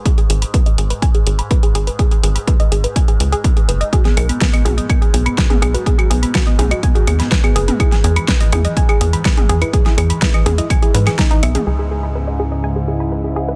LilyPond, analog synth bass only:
\new Staff \with { instrumentName = "Analog synth bass" } { \clef bass \time 4/4 \key gis \minor \tempo 4 = 124 r8 gis,,8 r8 gis,,8 r8 gis,,8 r8 gis,,8 | r8 gis,,8 r8 gis,,8 r8 cis,8 r8 fis,,8 | r8 b,,8 r8 b,,8 r8 b,,8 r8 b,,8 | r8 b,,8 r8 b,,8 r8 dis,8 r8 fis,,8 |
r8 e,8 r8 e,8 r8 e,8 r8 e,8 | r8 e,8 r8 e,8 r8 gis,8 r8 b,,8 | cis,1 | }